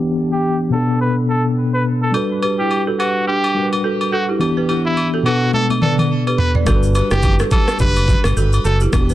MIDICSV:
0, 0, Header, 1, 6, 480
1, 0, Start_track
1, 0, Tempo, 566038
1, 1813, Time_signature, 4, 2, 24, 8
1, 7751, End_track
2, 0, Start_track
2, 0, Title_t, "Trumpet"
2, 0, Program_c, 0, 56
2, 276, Note_on_c, 0, 67, 78
2, 479, Note_off_c, 0, 67, 0
2, 618, Note_on_c, 0, 69, 71
2, 820, Note_off_c, 0, 69, 0
2, 857, Note_on_c, 0, 71, 88
2, 974, Note_off_c, 0, 71, 0
2, 1097, Note_on_c, 0, 69, 82
2, 1214, Note_off_c, 0, 69, 0
2, 1476, Note_on_c, 0, 71, 72
2, 1560, Note_off_c, 0, 71, 0
2, 1715, Note_on_c, 0, 69, 73
2, 1800, Note_off_c, 0, 69, 0
2, 2196, Note_on_c, 0, 67, 72
2, 2398, Note_off_c, 0, 67, 0
2, 2536, Note_on_c, 0, 66, 82
2, 2739, Note_off_c, 0, 66, 0
2, 2777, Note_on_c, 0, 67, 91
2, 3132, Note_off_c, 0, 67, 0
2, 3497, Note_on_c, 0, 66, 74
2, 3614, Note_off_c, 0, 66, 0
2, 4117, Note_on_c, 0, 64, 70
2, 4319, Note_off_c, 0, 64, 0
2, 4458, Note_on_c, 0, 66, 76
2, 4660, Note_off_c, 0, 66, 0
2, 4697, Note_on_c, 0, 69, 91
2, 4814, Note_off_c, 0, 69, 0
2, 4936, Note_on_c, 0, 69, 74
2, 5053, Note_off_c, 0, 69, 0
2, 5417, Note_on_c, 0, 71, 78
2, 5534, Note_off_c, 0, 71, 0
2, 6035, Note_on_c, 0, 67, 87
2, 6238, Note_off_c, 0, 67, 0
2, 6376, Note_on_c, 0, 69, 81
2, 6579, Note_off_c, 0, 69, 0
2, 6618, Note_on_c, 0, 71, 94
2, 6972, Note_off_c, 0, 71, 0
2, 7336, Note_on_c, 0, 69, 74
2, 7453, Note_off_c, 0, 69, 0
2, 7751, End_track
3, 0, Start_track
3, 0, Title_t, "Balafon"
3, 0, Program_c, 1, 12
3, 1818, Note_on_c, 1, 69, 84
3, 1825, Note_on_c, 1, 66, 65
3, 1926, Note_off_c, 1, 69, 0
3, 1931, Note_off_c, 1, 66, 0
3, 2057, Note_on_c, 1, 71, 74
3, 2064, Note_on_c, 1, 67, 58
3, 2166, Note_off_c, 1, 71, 0
3, 2170, Note_off_c, 1, 67, 0
3, 2196, Note_on_c, 1, 67, 65
3, 2203, Note_on_c, 1, 64, 51
3, 2275, Note_off_c, 1, 67, 0
3, 2279, Note_off_c, 1, 64, 0
3, 2436, Note_on_c, 1, 69, 80
3, 2443, Note_on_c, 1, 66, 65
3, 2515, Note_off_c, 1, 69, 0
3, 2519, Note_off_c, 1, 66, 0
3, 2537, Note_on_c, 1, 71, 76
3, 2544, Note_on_c, 1, 67, 57
3, 2646, Note_off_c, 1, 71, 0
3, 2650, Note_off_c, 1, 67, 0
3, 2777, Note_on_c, 1, 67, 81
3, 2784, Note_on_c, 1, 62, 60
3, 2966, Note_off_c, 1, 67, 0
3, 2970, Note_off_c, 1, 62, 0
3, 3257, Note_on_c, 1, 69, 80
3, 3264, Note_on_c, 1, 66, 63
3, 3366, Note_off_c, 1, 69, 0
3, 3370, Note_off_c, 1, 66, 0
3, 3497, Note_on_c, 1, 69, 82
3, 3504, Note_on_c, 1, 66, 64
3, 3606, Note_off_c, 1, 69, 0
3, 3610, Note_off_c, 1, 66, 0
3, 3636, Note_on_c, 1, 67, 79
3, 3643, Note_on_c, 1, 64, 62
3, 3714, Note_off_c, 1, 67, 0
3, 3719, Note_off_c, 1, 64, 0
3, 3877, Note_on_c, 1, 71, 72
3, 3883, Note_on_c, 1, 67, 55
3, 3955, Note_off_c, 1, 71, 0
3, 3959, Note_off_c, 1, 67, 0
3, 3978, Note_on_c, 1, 67, 68
3, 3985, Note_on_c, 1, 64, 53
3, 4087, Note_off_c, 1, 67, 0
3, 4091, Note_off_c, 1, 64, 0
3, 4356, Note_on_c, 1, 69, 72
3, 4363, Note_on_c, 1, 66, 58
3, 4435, Note_off_c, 1, 69, 0
3, 4439, Note_off_c, 1, 66, 0
3, 4458, Note_on_c, 1, 71, 73
3, 4465, Note_on_c, 1, 66, 56
3, 4567, Note_off_c, 1, 71, 0
3, 4571, Note_off_c, 1, 66, 0
3, 4937, Note_on_c, 1, 74, 76
3, 4944, Note_on_c, 1, 71, 60
3, 5046, Note_off_c, 1, 74, 0
3, 5051, Note_off_c, 1, 71, 0
3, 5317, Note_on_c, 1, 71, 67
3, 5324, Note_on_c, 1, 67, 52
3, 5395, Note_off_c, 1, 71, 0
3, 5399, Note_off_c, 1, 67, 0
3, 5557, Note_on_c, 1, 74, 69
3, 5563, Note_on_c, 1, 71, 56
3, 5635, Note_off_c, 1, 74, 0
3, 5639, Note_off_c, 1, 71, 0
3, 5657, Note_on_c, 1, 69, 86
3, 5664, Note_on_c, 1, 66, 67
3, 5766, Note_off_c, 1, 69, 0
3, 5770, Note_off_c, 1, 66, 0
3, 5897, Note_on_c, 1, 71, 78
3, 5904, Note_on_c, 1, 67, 60
3, 6006, Note_off_c, 1, 71, 0
3, 6010, Note_off_c, 1, 67, 0
3, 6037, Note_on_c, 1, 67, 67
3, 6044, Note_on_c, 1, 64, 53
3, 6116, Note_off_c, 1, 67, 0
3, 6120, Note_off_c, 1, 64, 0
3, 6277, Note_on_c, 1, 69, 81
3, 6284, Note_on_c, 1, 66, 65
3, 6355, Note_off_c, 1, 69, 0
3, 6359, Note_off_c, 1, 66, 0
3, 6378, Note_on_c, 1, 71, 73
3, 6385, Note_on_c, 1, 67, 60
3, 6487, Note_off_c, 1, 71, 0
3, 6491, Note_off_c, 1, 67, 0
3, 6618, Note_on_c, 1, 67, 84
3, 6624, Note_on_c, 1, 62, 62
3, 6806, Note_off_c, 1, 67, 0
3, 6811, Note_off_c, 1, 62, 0
3, 7097, Note_on_c, 1, 69, 81
3, 7104, Note_on_c, 1, 66, 64
3, 7206, Note_off_c, 1, 69, 0
3, 7210, Note_off_c, 1, 66, 0
3, 7337, Note_on_c, 1, 69, 83
3, 7344, Note_on_c, 1, 66, 65
3, 7446, Note_off_c, 1, 69, 0
3, 7450, Note_off_c, 1, 66, 0
3, 7476, Note_on_c, 1, 67, 80
3, 7483, Note_on_c, 1, 64, 65
3, 7555, Note_off_c, 1, 67, 0
3, 7559, Note_off_c, 1, 64, 0
3, 7716, Note_on_c, 1, 71, 74
3, 7723, Note_on_c, 1, 67, 57
3, 7751, Note_off_c, 1, 67, 0
3, 7751, Note_off_c, 1, 71, 0
3, 7751, End_track
4, 0, Start_track
4, 0, Title_t, "Tine electric piano"
4, 0, Program_c, 2, 4
4, 0, Note_on_c, 2, 52, 72
4, 0, Note_on_c, 2, 59, 67
4, 0, Note_on_c, 2, 62, 66
4, 0, Note_on_c, 2, 67, 80
4, 32, Control_c, 2, 64, 127
4, 592, Note_on_c, 2, 47, 65
4, 596, Note_off_c, 2, 59, 0
4, 606, Note_on_c, 2, 59, 61
4, 608, Note_off_c, 2, 52, 0
4, 611, Note_off_c, 2, 62, 0
4, 619, Note_off_c, 2, 67, 0
4, 621, Note_on_c, 2, 62, 59
4, 624, Control_c, 2, 64, 0
4, 635, Note_on_c, 2, 69, 73
4, 777, Control_c, 2, 64, 127
4, 1779, Note_off_c, 2, 47, 0
4, 1786, Note_off_c, 2, 59, 0
4, 1793, Note_off_c, 2, 62, 0
4, 1793, Note_on_c, 2, 55, 60
4, 1800, Note_off_c, 2, 69, 0
4, 1806, Note_on_c, 2, 62, 54
4, 1820, Note_on_c, 2, 66, 53
4, 1824, Control_c, 2, 64, 0
4, 1835, Note_on_c, 2, 71, 67
4, 1947, Control_c, 2, 64, 127
4, 2979, Note_off_c, 2, 55, 0
4, 2986, Note_off_c, 2, 62, 0
4, 2993, Note_off_c, 2, 66, 0
4, 3000, Note_off_c, 2, 71, 0
4, 3003, Note_on_c, 2, 55, 48
4, 3011, Note_on_c, 2, 62, 44
4, 3017, Note_on_c, 2, 66, 45
4, 3024, Note_on_c, 2, 70, 42
4, 3080, Note_on_c, 2, 71, 53
4, 3083, Note_off_c, 2, 70, 0
4, 3723, Note_on_c, 2, 52, 72
4, 3727, Note_off_c, 2, 62, 0
4, 3728, Note_off_c, 2, 55, 0
4, 3731, Note_on_c, 2, 59, 66
4, 3735, Note_off_c, 2, 66, 0
4, 3737, Note_on_c, 2, 62, 67
4, 3745, Note_on_c, 2, 67, 77
4, 3746, Control_c, 2, 64, 0
4, 3767, Note_off_c, 2, 71, 0
4, 3913, Control_c, 2, 64, 127
4, 4432, Note_on_c, 2, 47, 64
4, 4436, Note_off_c, 2, 59, 0
4, 4446, Note_on_c, 2, 59, 58
4, 4448, Note_off_c, 2, 52, 0
4, 4450, Note_off_c, 2, 62, 0
4, 4459, Note_off_c, 2, 67, 0
4, 4460, Note_on_c, 2, 62, 59
4, 4466, Control_c, 2, 64, 0
4, 4474, Note_on_c, 2, 69, 76
4, 4607, Control_c, 2, 64, 127
4, 5619, Note_off_c, 2, 47, 0
4, 5626, Note_off_c, 2, 59, 0
4, 5632, Note_on_c, 2, 55, 73
4, 5633, Note_off_c, 2, 62, 0
4, 5640, Note_off_c, 2, 69, 0
4, 5646, Note_on_c, 2, 62, 69
4, 5660, Note_on_c, 2, 66, 69
4, 5666, Control_c, 2, 64, 0
4, 5674, Note_on_c, 2, 69, 62
4, 5728, Note_off_c, 2, 69, 0
4, 5730, Note_on_c, 2, 71, 82
4, 5815, Control_c, 2, 64, 127
4, 7529, Note_off_c, 2, 55, 0
4, 7536, Note_off_c, 2, 62, 0
4, 7543, Note_off_c, 2, 66, 0
4, 7562, Note_on_c, 2, 52, 72
4, 7569, Note_on_c, 2, 59, 66
4, 7576, Note_on_c, 2, 62, 67
4, 7578, Note_off_c, 2, 71, 0
4, 7584, Note_on_c, 2, 66, 65
4, 7585, Control_c, 2, 64, 0
4, 7638, Note_on_c, 2, 67, 81
4, 7642, Note_off_c, 2, 66, 0
4, 7721, Control_c, 2, 64, 127
4, 7751, Note_off_c, 2, 52, 0
4, 7751, Note_off_c, 2, 59, 0
4, 7751, Note_off_c, 2, 62, 0
4, 7751, Note_off_c, 2, 67, 0
4, 7751, End_track
5, 0, Start_track
5, 0, Title_t, "Fretless electric bass"
5, 0, Program_c, 3, 35
5, 5653, Note_on_c, 3, 31, 109
5, 5934, Note_off_c, 3, 31, 0
5, 6032, Note_on_c, 3, 30, 87
5, 6284, Note_off_c, 3, 30, 0
5, 6613, Note_on_c, 3, 30, 92
5, 6894, Note_off_c, 3, 30, 0
5, 6992, Note_on_c, 3, 31, 89
5, 7067, Note_off_c, 3, 31, 0
5, 7092, Note_on_c, 3, 31, 83
5, 7270, Note_off_c, 3, 31, 0
5, 7332, Note_on_c, 3, 30, 86
5, 7510, Note_off_c, 3, 30, 0
5, 7572, Note_on_c, 3, 28, 107
5, 7751, Note_off_c, 3, 28, 0
5, 7751, End_track
6, 0, Start_track
6, 0, Title_t, "Drums"
6, 1815, Note_on_c, 9, 67, 68
6, 1900, Note_off_c, 9, 67, 0
6, 2057, Note_on_c, 9, 67, 73
6, 2141, Note_off_c, 9, 67, 0
6, 2295, Note_on_c, 9, 67, 66
6, 2380, Note_off_c, 9, 67, 0
6, 2542, Note_on_c, 9, 67, 81
6, 2627, Note_off_c, 9, 67, 0
6, 2917, Note_on_c, 9, 67, 77
6, 3002, Note_off_c, 9, 67, 0
6, 3160, Note_on_c, 9, 67, 78
6, 3245, Note_off_c, 9, 67, 0
6, 3400, Note_on_c, 9, 67, 70
6, 3485, Note_off_c, 9, 67, 0
6, 3736, Note_on_c, 9, 67, 67
6, 3821, Note_off_c, 9, 67, 0
6, 3976, Note_on_c, 9, 67, 74
6, 4061, Note_off_c, 9, 67, 0
6, 4215, Note_on_c, 9, 67, 70
6, 4300, Note_off_c, 9, 67, 0
6, 4460, Note_on_c, 9, 67, 86
6, 4545, Note_off_c, 9, 67, 0
6, 4694, Note_on_c, 9, 48, 54
6, 4779, Note_off_c, 9, 48, 0
6, 4833, Note_on_c, 9, 48, 53
6, 4837, Note_on_c, 9, 67, 83
6, 4918, Note_off_c, 9, 48, 0
6, 4922, Note_off_c, 9, 67, 0
6, 4934, Note_on_c, 9, 47, 71
6, 5019, Note_off_c, 9, 47, 0
6, 5073, Note_on_c, 9, 47, 62
6, 5080, Note_on_c, 9, 67, 75
6, 5158, Note_off_c, 9, 47, 0
6, 5165, Note_off_c, 9, 67, 0
6, 5319, Note_on_c, 9, 67, 70
6, 5404, Note_off_c, 9, 67, 0
6, 5414, Note_on_c, 9, 43, 91
6, 5499, Note_off_c, 9, 43, 0
6, 5552, Note_on_c, 9, 43, 91
6, 5637, Note_off_c, 9, 43, 0
6, 5653, Note_on_c, 9, 36, 118
6, 5653, Note_on_c, 9, 37, 92
6, 5653, Note_on_c, 9, 82, 79
6, 5655, Note_on_c, 9, 67, 72
6, 5737, Note_off_c, 9, 37, 0
6, 5738, Note_off_c, 9, 36, 0
6, 5738, Note_off_c, 9, 82, 0
6, 5740, Note_off_c, 9, 67, 0
6, 5792, Note_on_c, 9, 82, 51
6, 5877, Note_off_c, 9, 82, 0
6, 5893, Note_on_c, 9, 82, 55
6, 5895, Note_on_c, 9, 67, 78
6, 5978, Note_off_c, 9, 82, 0
6, 5980, Note_off_c, 9, 67, 0
6, 6029, Note_on_c, 9, 82, 50
6, 6032, Note_on_c, 9, 37, 87
6, 6113, Note_off_c, 9, 82, 0
6, 6117, Note_off_c, 9, 37, 0
6, 6130, Note_on_c, 9, 82, 69
6, 6133, Note_on_c, 9, 36, 97
6, 6134, Note_on_c, 9, 67, 70
6, 6215, Note_off_c, 9, 82, 0
6, 6217, Note_off_c, 9, 36, 0
6, 6219, Note_off_c, 9, 67, 0
6, 6269, Note_on_c, 9, 82, 54
6, 6274, Note_on_c, 9, 37, 88
6, 6354, Note_off_c, 9, 82, 0
6, 6359, Note_off_c, 9, 37, 0
6, 6369, Note_on_c, 9, 82, 53
6, 6371, Note_on_c, 9, 36, 93
6, 6379, Note_on_c, 9, 67, 90
6, 6454, Note_off_c, 9, 82, 0
6, 6456, Note_off_c, 9, 36, 0
6, 6464, Note_off_c, 9, 67, 0
6, 6511, Note_on_c, 9, 37, 90
6, 6513, Note_on_c, 9, 82, 45
6, 6595, Note_off_c, 9, 37, 0
6, 6598, Note_off_c, 9, 82, 0
6, 6606, Note_on_c, 9, 82, 67
6, 6613, Note_on_c, 9, 36, 87
6, 6691, Note_off_c, 9, 82, 0
6, 6698, Note_off_c, 9, 36, 0
6, 6754, Note_on_c, 9, 82, 46
6, 6756, Note_on_c, 9, 67, 85
6, 6839, Note_off_c, 9, 82, 0
6, 6841, Note_off_c, 9, 67, 0
6, 6851, Note_on_c, 9, 36, 94
6, 6859, Note_on_c, 9, 82, 54
6, 6936, Note_off_c, 9, 36, 0
6, 6944, Note_off_c, 9, 82, 0
6, 6987, Note_on_c, 9, 37, 92
6, 6995, Note_on_c, 9, 82, 54
6, 7000, Note_on_c, 9, 67, 81
6, 7072, Note_off_c, 9, 37, 0
6, 7079, Note_off_c, 9, 82, 0
6, 7084, Note_off_c, 9, 67, 0
6, 7099, Note_on_c, 9, 82, 87
6, 7184, Note_off_c, 9, 82, 0
6, 7231, Note_on_c, 9, 82, 41
6, 7239, Note_on_c, 9, 67, 69
6, 7316, Note_off_c, 9, 82, 0
6, 7324, Note_off_c, 9, 67, 0
6, 7334, Note_on_c, 9, 82, 46
6, 7418, Note_off_c, 9, 82, 0
6, 7466, Note_on_c, 9, 82, 53
6, 7551, Note_off_c, 9, 82, 0
6, 7572, Note_on_c, 9, 36, 121
6, 7572, Note_on_c, 9, 37, 98
6, 7572, Note_on_c, 9, 82, 78
6, 7576, Note_on_c, 9, 67, 72
6, 7657, Note_off_c, 9, 36, 0
6, 7657, Note_off_c, 9, 37, 0
6, 7657, Note_off_c, 9, 82, 0
6, 7661, Note_off_c, 9, 67, 0
6, 7712, Note_on_c, 9, 82, 51
6, 7751, Note_off_c, 9, 82, 0
6, 7751, End_track
0, 0, End_of_file